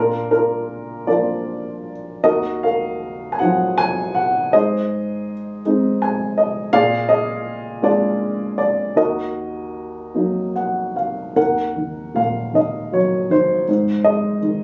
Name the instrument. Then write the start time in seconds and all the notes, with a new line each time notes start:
upright piano
Already playing: A#2 D4 F4 A#4
0.31 D4 F4 A#4
1.07 F3 A#3 D4 F4 A#4 D5
2.23 D#2 F#4 A#4 D#5
2.63 A#4 F5
3.32 G#5
3.39 F3 F#3 D#4 F#5
3.78 G#5
4.15 F#5
4.53 G#2 G#4 C5 D#5
5.65 G#3 C4 D#4
6.02 G#5
6.38 D#5
6.73 A#2 G#4 D5 F5
7.09 G#4 D#5
7.82 G#3 A#3 D4 F4 G#4 D5
8.58 D5
8.96 D#2 F#4 A#4 D#5
10.14 F#3 A#3 D#4
10.56 F#5
10.96 F5
11.36 D#2 A#4 F#5
11.76 D#3
12.15 A#2 F5
12.54 D#3 D#5
12.92 F#3 C#5
13.30 D#3 D#4 C5
13.68 G#2
14.04 G#3 D#5
14.42 D#3